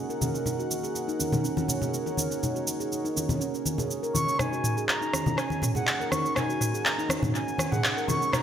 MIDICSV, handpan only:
0, 0, Header, 1, 2, 480
1, 0, Start_track
1, 0, Key_signature, -6, "minor"
1, 0, Tempo, 491803
1, 448, Time_signature, 4, 2, 24, 8
1, 8225, End_track
2, 0, Start_track
2, 0, Title_t, "Handpan"
2, 0, Program_c, 0, 114
2, 94, Note_on_c, 0, 70, 71
2, 156, Note_off_c, 0, 70, 0
2, 209, Note_on_c, 0, 61, 72
2, 323, Note_off_c, 0, 61, 0
2, 448, Note_on_c, 0, 63, 77
2, 569, Note_off_c, 0, 63, 0
2, 575, Note_on_c, 0, 66, 71
2, 636, Note_off_c, 0, 66, 0
2, 814, Note_on_c, 0, 68, 70
2, 916, Note_off_c, 0, 68, 0
2, 1054, Note_on_c, 0, 63, 72
2, 1115, Note_off_c, 0, 63, 0
2, 1166, Note_on_c, 0, 61, 72
2, 1281, Note_off_c, 0, 61, 0
2, 1406, Note_on_c, 0, 61, 75
2, 1520, Note_off_c, 0, 61, 0
2, 1532, Note_on_c, 0, 61, 68
2, 1595, Note_off_c, 0, 61, 0
2, 1773, Note_on_c, 0, 68, 70
2, 1876, Note_off_c, 0, 68, 0
2, 2014, Note_on_c, 0, 70, 70
2, 2076, Note_off_c, 0, 70, 0
2, 2125, Note_on_c, 0, 61, 71
2, 2241, Note_off_c, 0, 61, 0
2, 2369, Note_on_c, 0, 63, 75
2, 2489, Note_off_c, 0, 63, 0
2, 2493, Note_on_c, 0, 66, 71
2, 2555, Note_off_c, 0, 66, 0
2, 2734, Note_on_c, 0, 68, 72
2, 2836, Note_off_c, 0, 68, 0
2, 2973, Note_on_c, 0, 63, 68
2, 3035, Note_off_c, 0, 63, 0
2, 3087, Note_on_c, 0, 61, 71
2, 3202, Note_off_c, 0, 61, 0
2, 3324, Note_on_c, 0, 61, 78
2, 3443, Note_off_c, 0, 61, 0
2, 3455, Note_on_c, 0, 61, 67
2, 3516, Note_off_c, 0, 61, 0
2, 3692, Note_on_c, 0, 68, 73
2, 3795, Note_off_c, 0, 68, 0
2, 3932, Note_on_c, 0, 70, 70
2, 3995, Note_off_c, 0, 70, 0
2, 4047, Note_on_c, 0, 61, 73
2, 4162, Note_off_c, 0, 61, 0
2, 4285, Note_on_c, 0, 63, 79
2, 4408, Note_off_c, 0, 63, 0
2, 4415, Note_on_c, 0, 66, 72
2, 4476, Note_off_c, 0, 66, 0
2, 4658, Note_on_c, 0, 68, 75
2, 4758, Note_off_c, 0, 68, 0
2, 4895, Note_on_c, 0, 63, 70
2, 4956, Note_off_c, 0, 63, 0
2, 5012, Note_on_c, 0, 61, 71
2, 5124, Note_off_c, 0, 61, 0
2, 5250, Note_on_c, 0, 61, 81
2, 5362, Note_off_c, 0, 61, 0
2, 5374, Note_on_c, 0, 61, 69
2, 5436, Note_off_c, 0, 61, 0
2, 5617, Note_on_c, 0, 68, 74
2, 5718, Note_off_c, 0, 68, 0
2, 5858, Note_on_c, 0, 70, 73
2, 5918, Note_off_c, 0, 70, 0
2, 5970, Note_on_c, 0, 61, 74
2, 6083, Note_off_c, 0, 61, 0
2, 6207, Note_on_c, 0, 63, 81
2, 6329, Note_off_c, 0, 63, 0
2, 6336, Note_on_c, 0, 66, 74
2, 6397, Note_off_c, 0, 66, 0
2, 6578, Note_on_c, 0, 68, 74
2, 6678, Note_off_c, 0, 68, 0
2, 6818, Note_on_c, 0, 63, 72
2, 6877, Note_off_c, 0, 63, 0
2, 6933, Note_on_c, 0, 61, 74
2, 7045, Note_off_c, 0, 61, 0
2, 7176, Note_on_c, 0, 61, 78
2, 7290, Note_off_c, 0, 61, 0
2, 7302, Note_on_c, 0, 61, 70
2, 7360, Note_off_c, 0, 61, 0
2, 7540, Note_on_c, 0, 68, 75
2, 7639, Note_off_c, 0, 68, 0
2, 7778, Note_on_c, 0, 70, 75
2, 7838, Note_off_c, 0, 70, 0
2, 7893, Note_on_c, 0, 61, 76
2, 8005, Note_off_c, 0, 61, 0
2, 8135, Note_on_c, 0, 63, 73
2, 8225, Note_off_c, 0, 63, 0
2, 8225, End_track
0, 0, End_of_file